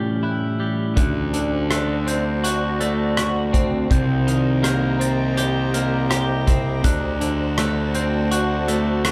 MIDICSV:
0, 0, Header, 1, 6, 480
1, 0, Start_track
1, 0, Tempo, 734394
1, 635, Time_signature, 4, 2, 24, 8
1, 5958, End_track
2, 0, Start_track
2, 0, Title_t, "Glockenspiel"
2, 0, Program_c, 0, 9
2, 0, Note_on_c, 0, 91, 51
2, 155, Note_off_c, 0, 91, 0
2, 157, Note_on_c, 0, 90, 53
2, 633, Note_off_c, 0, 90, 0
2, 641, Note_on_c, 0, 90, 60
2, 1111, Note_off_c, 0, 90, 0
2, 1119, Note_on_c, 0, 90, 51
2, 1357, Note_off_c, 0, 90, 0
2, 1358, Note_on_c, 0, 91, 56
2, 1596, Note_on_c, 0, 90, 62
2, 1597, Note_off_c, 0, 91, 0
2, 2076, Note_off_c, 0, 90, 0
2, 2558, Note_on_c, 0, 91, 65
2, 3031, Note_off_c, 0, 91, 0
2, 3039, Note_on_c, 0, 91, 58
2, 3276, Note_on_c, 0, 93, 56
2, 3277, Note_off_c, 0, 91, 0
2, 3516, Note_off_c, 0, 93, 0
2, 3517, Note_on_c, 0, 91, 63
2, 3996, Note_off_c, 0, 91, 0
2, 4474, Note_on_c, 0, 90, 73
2, 4953, Note_off_c, 0, 90, 0
2, 4961, Note_on_c, 0, 90, 60
2, 5195, Note_on_c, 0, 91, 58
2, 5198, Note_off_c, 0, 90, 0
2, 5435, Note_off_c, 0, 91, 0
2, 5438, Note_on_c, 0, 90, 66
2, 5917, Note_off_c, 0, 90, 0
2, 5958, End_track
3, 0, Start_track
3, 0, Title_t, "Ambient pad"
3, 0, Program_c, 1, 92
3, 0, Note_on_c, 1, 45, 61
3, 0, Note_on_c, 1, 52, 58
3, 0, Note_on_c, 1, 61, 63
3, 0, Note_on_c, 1, 67, 70
3, 625, Note_off_c, 1, 61, 0
3, 626, Note_off_c, 1, 45, 0
3, 626, Note_off_c, 1, 52, 0
3, 627, Note_off_c, 1, 67, 0
3, 627, Note_on_c, 1, 66, 72
3, 630, Note_on_c, 1, 72, 64
3, 630, Note_on_c, 1, 81, 81
3, 631, Note_on_c, 1, 74, 65
3, 2533, Note_off_c, 1, 66, 0
3, 2534, Note_off_c, 1, 81, 0
3, 2535, Note_off_c, 1, 74, 0
3, 2551, Note_on_c, 1, 75, 67
3, 2555, Note_on_c, 1, 82, 72
3, 2557, Note_on_c, 1, 67, 65
3, 4454, Note_off_c, 1, 75, 0
3, 4456, Note_off_c, 1, 82, 0
3, 4457, Note_off_c, 1, 67, 0
3, 4471, Note_on_c, 1, 66, 71
3, 4471, Note_on_c, 1, 74, 69
3, 4471, Note_on_c, 1, 81, 78
3, 5958, Note_off_c, 1, 66, 0
3, 5958, Note_off_c, 1, 72, 0
3, 5958, Note_off_c, 1, 74, 0
3, 5958, Note_off_c, 1, 81, 0
3, 5958, End_track
4, 0, Start_track
4, 0, Title_t, "Clean electric guitar"
4, 0, Program_c, 2, 27
4, 0, Note_on_c, 2, 45, 44
4, 0, Note_on_c, 2, 55, 45
4, 150, Note_on_c, 2, 64, 54
4, 383, Note_off_c, 2, 55, 0
4, 391, Note_on_c, 2, 55, 48
4, 632, Note_on_c, 2, 50, 50
4, 633, Note_off_c, 2, 55, 0
4, 633, Note_off_c, 2, 64, 0
4, 635, Note_off_c, 2, 45, 0
4, 867, Note_off_c, 2, 50, 0
4, 875, Note_on_c, 2, 50, 45
4, 1113, Note_on_c, 2, 57, 47
4, 1350, Note_on_c, 2, 60, 49
4, 1593, Note_on_c, 2, 66, 52
4, 1825, Note_off_c, 2, 57, 0
4, 1833, Note_on_c, 2, 57, 52
4, 2065, Note_off_c, 2, 66, 0
4, 2073, Note_on_c, 2, 66, 59
4, 2075, Note_off_c, 2, 50, 0
4, 2305, Note_off_c, 2, 60, 0
4, 2308, Note_on_c, 2, 60, 52
4, 2549, Note_on_c, 2, 48, 52
4, 2554, Note_off_c, 2, 57, 0
4, 2554, Note_off_c, 2, 66, 0
4, 2791, Note_on_c, 2, 51, 50
4, 3025, Note_on_c, 2, 58, 57
4, 3045, Note_off_c, 2, 60, 0
4, 3266, Note_on_c, 2, 60, 55
4, 3512, Note_on_c, 2, 67, 62
4, 3743, Note_off_c, 2, 58, 0
4, 3751, Note_on_c, 2, 58, 54
4, 3752, Note_off_c, 2, 48, 0
4, 3981, Note_off_c, 2, 67, 0
4, 3988, Note_on_c, 2, 67, 64
4, 3993, Note_off_c, 2, 51, 0
4, 4221, Note_off_c, 2, 60, 0
4, 4229, Note_on_c, 2, 60, 58
4, 4472, Note_off_c, 2, 60, 0
4, 4472, Note_off_c, 2, 67, 0
4, 4473, Note_off_c, 2, 58, 0
4, 4473, Note_on_c, 2, 50, 54
4, 4705, Note_off_c, 2, 50, 0
4, 4713, Note_on_c, 2, 50, 50
4, 4956, Note_on_c, 2, 57, 58
4, 5197, Note_on_c, 2, 60, 57
4, 5433, Note_on_c, 2, 66, 62
4, 5671, Note_off_c, 2, 57, 0
4, 5674, Note_on_c, 2, 57, 52
4, 5906, Note_off_c, 2, 66, 0
4, 5914, Note_off_c, 2, 50, 0
4, 5914, Note_on_c, 2, 66, 62
4, 5958, Note_off_c, 2, 57, 0
4, 5958, Note_off_c, 2, 60, 0
4, 5958, Note_off_c, 2, 66, 0
4, 5958, End_track
5, 0, Start_track
5, 0, Title_t, "Fingered electric bass"
5, 0, Program_c, 3, 33
5, 632, Note_on_c, 3, 38, 59
5, 2528, Note_off_c, 3, 38, 0
5, 2554, Note_on_c, 3, 36, 63
5, 4448, Note_off_c, 3, 36, 0
5, 4469, Note_on_c, 3, 38, 70
5, 5958, Note_off_c, 3, 38, 0
5, 5958, End_track
6, 0, Start_track
6, 0, Title_t, "Drums"
6, 634, Note_on_c, 9, 36, 78
6, 634, Note_on_c, 9, 42, 59
6, 699, Note_off_c, 9, 36, 0
6, 699, Note_off_c, 9, 42, 0
6, 874, Note_on_c, 9, 42, 42
6, 939, Note_off_c, 9, 42, 0
6, 1115, Note_on_c, 9, 37, 74
6, 1115, Note_on_c, 9, 42, 53
6, 1180, Note_off_c, 9, 37, 0
6, 1180, Note_off_c, 9, 42, 0
6, 1357, Note_on_c, 9, 42, 41
6, 1422, Note_off_c, 9, 42, 0
6, 1597, Note_on_c, 9, 42, 60
6, 1662, Note_off_c, 9, 42, 0
6, 1834, Note_on_c, 9, 42, 45
6, 1900, Note_off_c, 9, 42, 0
6, 2074, Note_on_c, 9, 37, 80
6, 2074, Note_on_c, 9, 42, 56
6, 2140, Note_off_c, 9, 37, 0
6, 2140, Note_off_c, 9, 42, 0
6, 2314, Note_on_c, 9, 36, 61
6, 2314, Note_on_c, 9, 42, 46
6, 2379, Note_off_c, 9, 36, 0
6, 2380, Note_off_c, 9, 42, 0
6, 2554, Note_on_c, 9, 36, 78
6, 2556, Note_on_c, 9, 42, 60
6, 2619, Note_off_c, 9, 36, 0
6, 2622, Note_off_c, 9, 42, 0
6, 2796, Note_on_c, 9, 42, 41
6, 2862, Note_off_c, 9, 42, 0
6, 3033, Note_on_c, 9, 37, 77
6, 3033, Note_on_c, 9, 42, 60
6, 3098, Note_off_c, 9, 37, 0
6, 3098, Note_off_c, 9, 42, 0
6, 3275, Note_on_c, 9, 42, 45
6, 3341, Note_off_c, 9, 42, 0
6, 3513, Note_on_c, 9, 42, 70
6, 3578, Note_off_c, 9, 42, 0
6, 3753, Note_on_c, 9, 42, 51
6, 3818, Note_off_c, 9, 42, 0
6, 3991, Note_on_c, 9, 37, 81
6, 3991, Note_on_c, 9, 42, 70
6, 4057, Note_off_c, 9, 37, 0
6, 4057, Note_off_c, 9, 42, 0
6, 4232, Note_on_c, 9, 42, 50
6, 4233, Note_on_c, 9, 36, 61
6, 4298, Note_off_c, 9, 36, 0
6, 4298, Note_off_c, 9, 42, 0
6, 4472, Note_on_c, 9, 42, 65
6, 4473, Note_on_c, 9, 36, 80
6, 4537, Note_off_c, 9, 42, 0
6, 4538, Note_off_c, 9, 36, 0
6, 4714, Note_on_c, 9, 42, 47
6, 4780, Note_off_c, 9, 42, 0
6, 4953, Note_on_c, 9, 37, 82
6, 4953, Note_on_c, 9, 42, 63
6, 5018, Note_off_c, 9, 37, 0
6, 5018, Note_off_c, 9, 42, 0
6, 5193, Note_on_c, 9, 42, 42
6, 5258, Note_off_c, 9, 42, 0
6, 5435, Note_on_c, 9, 42, 64
6, 5500, Note_off_c, 9, 42, 0
6, 5675, Note_on_c, 9, 42, 46
6, 5741, Note_off_c, 9, 42, 0
6, 5913, Note_on_c, 9, 37, 84
6, 5913, Note_on_c, 9, 42, 60
6, 5958, Note_off_c, 9, 37, 0
6, 5958, Note_off_c, 9, 42, 0
6, 5958, End_track
0, 0, End_of_file